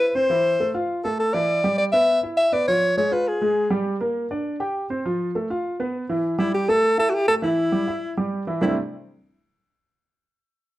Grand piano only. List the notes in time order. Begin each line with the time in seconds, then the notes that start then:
0.15 C4 C5
0.30 E3 E4
0.60 A3 A4
0.75 F4 F5
1.05 A3 A4
1.34 E3 E4
1.64 G3 G4
1.93 B3 B4
2.23 E4 E5
2.52 B3 B4
2.68 F3 F4
2.97 G#3 G#4
3.11 F4 F5
3.42 G#3 G#4
3.71 G3 G4
4.01 A#3 A#4
4.31 D4 D5
4.60 G4 G5
4.90 C4 C5
5.05 F3 F4
5.35 A3 A4
5.50 F4 F5
5.80 B3 B4
6.09 E3 E4
6.39 G3 G4
6.68 A3 A4
6.98 E4 E5
7.28 A3 A4
7.42 E3 E4
7.72 G3 G4
7.87 E4 E5
8.17 G3 G4
8.47 E3 E4
8.61 C3 G3 A3 C4 D4 E4